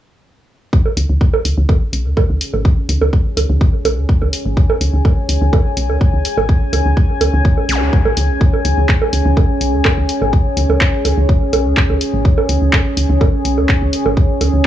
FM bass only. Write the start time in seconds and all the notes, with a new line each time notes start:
0.97 C#2
1.09 C#2
1.45 C#2
1.58 C#2
1.69 G#1
1.93 B1
2.06 C#2
2.29 C#2
2.54 G#1
2.89 C#2
3.01 C#2
3.37 C#2
3.50 C#2
3.85 B1
3.97 C#2
4.22 C#2
4.46 G#1
4.81 C#2
4.94 C#2
5.29 C#2
5.42 C#2
5.53 G#1
5.77 B1
5.89 C#2
6.13 C#2
6.37 G#1
6.73 C#2
6.86 C#2
7.21 C#2
7.34 C#2
7.45 G#1
7.69 B1
7.82 C#2
8.06 G#1
8.17 C#2
8.30 B1
8.65 C#2
8.77 C#2
9.13 C#2
9.25 C#2
9.61 B1
9.73 C#2
9.97 C#2
10.22 G#1
10.57 C#2
10.69 C#2
11.05 C#2
11.18 C#2
11.29 G#1
11.53 B1
11.66 C#2
11.90 C#2
12.14 G#1
12.49 C#2
12.62 C#2
12.97 C#2
13.10 C#2
13.21 G#1
13.45 B1
13.58 C#2
13.82 C#2
14.06 G#1
14.41 C#2
14.54 C#2